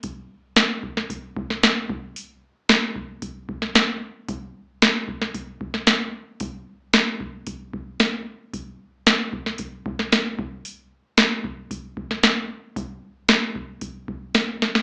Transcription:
\new DrumStaff \with { instrumentName = "Drums" } \drummode { \time 4/4 \tempo 4 = 113 <hho bd>4 <hho sn>8 bd16 sn16 <hho bd>8 bd16 sn16 <hho sn>8 bd8 | hho4 <hho sn>8 bd8 <hho bd>8 bd16 sn16 <hho sn>4 | <hho bd>4 <hho sn>8 bd16 sn16 <hho bd>8 bd16 sn16 <hho sn>4 | <hho bd>4 <hho sn>8 bd8 <hho bd>8 bd8 <hho sn>4 |
<hho bd>4 <hho sn>8 bd16 sn16 <hho bd>8 bd16 sn16 <hho sn>8 bd8 | hho4 <hho sn>8 bd8 <hho bd>8 bd16 sn16 <hho sn>4 | <hho bd>4 <hho sn>8 bd8 <hho bd>8 bd8 <hho sn>8 sn16 sn16 | }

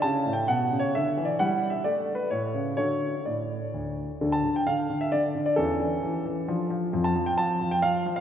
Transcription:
<<
  \new Staff \with { instrumentName = "Grand piano" } { \time 3/4 \key d \major \tempo 4 = 132 << { \tuplet 3/2 { a''4 g''8 fis''4 cis''8 e''4 d''8 } | \tuplet 3/2 { fis''4 e''8 d''4 b'8 } cis''4 | cis''4 d''4. r8 | \key d \minor r16 a''8 g''16 f''8. e''16 d''8. d''16 |
a'2~ a'8 r8 | r16 a''8 g''16 a''8. g''16 f''8. f''16 | } \\ { g'2 r4 | e'4 r2 | r2. | <d' a'>2. |
<cis' g'>2 <d' f'>4 | <c' f'>2. | } >> }
  \new Staff \with { instrumentName = "Grand piano" } { \clef bass \time 3/4 \key d \major cis8 a,8 b,8 cis8 d8 e8 | g4 a4 a,8 cis8 | <d fis' a'>4 a,4 d,4 | \key d \minor <d, d>8 d8 d8 d8 d8 d8 |
<e, e>8 e8 e8 e8 f8 f8 | <f, f>8 f8 f8 f8 f8 f8 | }
>>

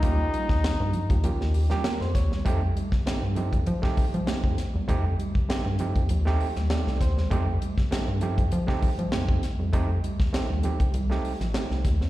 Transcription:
<<
  \new Staff \with { instrumentName = "Reed electric piano" } { \time 4/4 \key f \major \tempo 4 = 99 << { r2 r8 g'8 bes'16 c''16 des''8 | r1 | r2. d''8 c''8 | r1 |
r1 | } \\ { <bes des' f' g'>8. r8. <f' g'>16 <f' g'>16 <bes des' f' g'>16 r8 <bes des' f' g'>16 r8 <f' g'>16 r16 | <a c' ees' g'>16 r16 <ees' g'>16 r16 <a c' ees' g'>16 r16 <a c' ees' g'>16 r8 <a c' ees' g'>16 r8 <a c' ees' g'>8 r8 | <a c' ees' g'>16 r16 <ees' g'>16 r16 <a c' ees' g'>16 r16 <a c' ees' g'>16 r8 <a c' ees' g'>16 r8 <a c' ees' g'>8 r8 | <a c' ees' g'>16 r16 <ees' g'>16 r16 <a c' ees' g'>16 r16 <a c' ees' g'>16 r8 <a c' ees' g'>16 r8 <a c' ees' g'>8 r8 |
<a c' ees' g'>16 r16 <ees' g'>16 r16 <a c' ees' g'>16 r16 <a c' ees' g'>16 r8 <a c' ees' g'>16 r8 <a c' ees' g'>8 r8 | } >> }
  \new Staff \with { instrumentName = "Trombone" } { \time 4/4 \key f \major ees'2. r4 | r1 | r1 | r1 |
r1 | }
  \new Staff \with { instrumentName = "Clean electric guitar" } { \clef bass \time 4/4 \key f \major bes16 r16 g16 r8 g16 f16 r16 f16 r8 g16 bes16 r8 g16 | a16 r16 g16 r8 g16 f16 r16 f16 r8 g16 a16 r8 g16 | a16 r16 g16 r8 g16 f16 r16 f16 r8 g16 a16 r8 g16 | a16 r16 g16 r8 g16 f16 r16 f16 r8 g16 a16 r8 g16 |
a16 r16 g16 r8 g16 f16 r16 g16 r8 f16 a16 r8 c'16 | }
  \new Staff \with { instrumentName = "Analog synth bass" } { \clef bass \time 4/4 \key f \major ees,16 r8 ees,16 r16 g,16 r16 ees,16 ees,16 ees,8 r8 f,16 ees,16 e,16 | f,8 r16 g,16 r16 g,16 r16 f,16 f16 r16 f16 f16 f,16 f,16 r16 e,16 | f,8 r16 g,16 r16 g,16 r16 f,16 ees,8 r16 ees,16 r16 c,16 ees,16 e,16 | f,8 r16 g,16 r16 g,16 r16 f,16 f16 r16 f16 f16 f,8 r16 f,16 |
f,8 r16 ees,16 r16 ees,16 r16 c,16 c,8 r16 a,,16 r16 c,16 ees,16 e,16 | }
  \new DrumStaff \with { instrumentName = "Drums" } \drummode { \time 4/4 <hh bd>8 hh16 <bd sn>16 <hh sn>8 hh16 <hh bd>16 hh16 sn16 hho16 <hh sn>16 <hh sn>16 sn16 <hh bd sn>16 sn16 | <hh bd>8 hh16 <bd sn>16 <hh sn>8 hh16 <hh bd>16 hh16 <bd sn>16 <hho bd>16 hh16 <hh sn>16 bd16 <hh sn>8 | <hh bd>8 hh16 bd16 <hh sn>8 hh16 <hh bd>16 hh16 sn16 hho16 <hh sn>16 <hh sn>16 sn16 <hh bd sn>16 sn16 | <hh bd>8 hh16 <bd sn>16 <hh sn>8 hh16 <hh bd>16 hh16 <bd sn>16 <hho bd>16 hh16 <hh sn>16 bd16 <hh sn>8 |
<hh bd>8 hh16 <bd sn>16 <hh sn>8 hh16 <hh bd>16 hh16 sn16 hho16 <hh sn>16 <hh sn>16 sn16 <hh bd sn>16 sn16 | }
>>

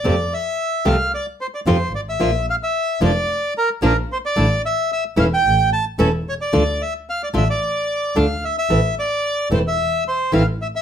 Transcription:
<<
  \new Staff \with { instrumentName = "Bandoneon" } { \time 4/4 \key a \phrygian \tempo 4 = 111 d''8 e''4 f''8 d''8 c''16 d''16 c''8 d''16 e''16~ | e''8 f''16 e''8. d''4 bes'8 bes'8 c''16 d''16~ | d''8 e''8 e''8 f''16 g''8. a''8 a'8 cis''16 d''16~ | d''8 e''8 f''16 d''16 e''16 d''4~ d''16 f''8 e''16 e''16~ |
e''8 d''4 c''16 e''8. c''8 f''8 e''16 e''16 | }
  \new Staff \with { instrumentName = "Nylon-string guitar" } { \time 4/4 \key a \phrygian <c f a c' f'>8 r4 <c f a c' f'>8 r4 <c f a c' f'>8 r8 | <f bes d' f'>8 r4 <f bes d' f'>8 r4 <f bes d' f'>8 r8 | <d a d' e'>8 r4 <e a cis' e'>8 r4 <e a cis' e'>8 r8 | <d a d' f'>8 r4 <d a d' f'>8 r4 <d a d' f'>8 r8 |
<e a c' e'>8 r4 <e a c' e'>8 r4 <e a c' e'>8 r8 | }
  \new Staff \with { instrumentName = "Double bass" } { \clef bass \time 4/4 \key a \phrygian f,8 r4 c,8 r4 f,8 gis,,8 | bes,,8 r4 f,,8 r4 bes,,8 r8 | a,,8 r4 e,,8 a,,8 r8 e,,8 r8 | d,8 r4 a,,8 r4 d,8 r8 |
a,,8 r4 e,,8 r4 a,,8 r8 | }
>>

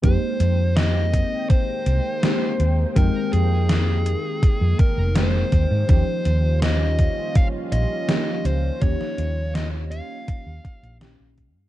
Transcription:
<<
  \new Staff \with { instrumentName = "Lead electric guitar" } { \time 4/4 \key f \minor \tempo 4 = 82 c''4 ees''4 c''2 | bes'8 aes'2 bes'8 c''4 | c''4 ees''4 f''8 ees''4 c''8 | des''4 ees''8 f''4. r4 | }
  \new Staff \with { instrumentName = "FM electric piano" } { \time 4/4 \key f \minor <aes bes c' ees' g'>2. <aes bes c' ees' g'>4 | <aes bes c' ees' g''>2. <aes bes c' ees' g'>4 | <f bes des' ees' g'>2. <f bes des' ees' g'>4 | <f bes des' ees' g'>2. <f bes des' ees' g'>4 | }
  \new Staff \with { instrumentName = "Analog synth pad" } { \time 4/4 \key f \minor << { <aes bes g''>1~ | <aes bes g''>1 | <g des' f'>1~ | <g des' f'>1 | } \\ { ees1~ | ees1~ | ees1~ | ees1 | } >> }
  \new Staff \with { instrumentName = "Fretless electric bass" } { \clef bass \time 4/4 \key f \minor f,16 r16 f,4 r4 c,16 r8. ees,16 r16 | f,16 r16 f,4 r8. f,16 r16 f,,8 r16 ees,16 aes,16 | ees,16 r16 ees,4 r4 bes,,16 r8. des,16 r16 | ees,16 r16 ees,4 r8. ees,16 r16 bes,,8 bes,,8 g,16 | }
  \new DrumStaff \with { instrumentName = "Drums" } \drummode { \time 4/4 <hh bd>8 hh8 <hh sn>8 <hh bd>8 <hh bd>8 hh8 <hh sn>8 hh8 | <hh bd>8 hh8 <hh sn>8 hh8 <hh bd>8 <hh bd>8 <hh sn>8 <hh bd>8 | <hh bd>8 hh8 <hh sn>8 <hh bd>8 <hh bd>8 hh8 <hh sn>8 hh8 | <hh bd>16 sn16 hh8 <hh sn>8 hh8 <hh bd>8 <hh bd>16 hh16 <hh sn>8 <hh bd>8 | }
>>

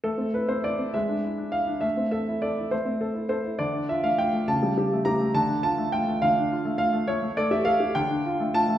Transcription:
\new Staff \with { instrumentName = "Grand piano" } { \time 6/8 \key a \minor \tempo 4. = 68 << { a'8 b'16 c''16 d''8 e''4 f''8 | e''8 e''8 d''8 c''4 c''8 | d''8 e''16 f''16 g''8 a''4 bes''8 | a''8 a''8 g''8 f''4 f''8 |
cis''8 d''16 e''16 f''8 g''4 a''8 | } \\ { a16 c'16 e'16 c'16 e'16 c'16 gis16 d'16 e'16 d'16 e'16 d'16 | a16 c'16 a'16 e'16 a'16 e'16 a16 c'16 a'16 e'16 a'16 e'16 | d16 d'16 f'16 a16 f'16 a16 cis16 g16 g'16 a16 g'16 a16 | d16 d'16 f'16 a16 f'16 a16 d16 d'16 f'16 a16 f'16 a16 |
a16 a16 a'16 g'16 a'16 g'16 d16 d'16 f'16 a16 f'16 a16 | } >> }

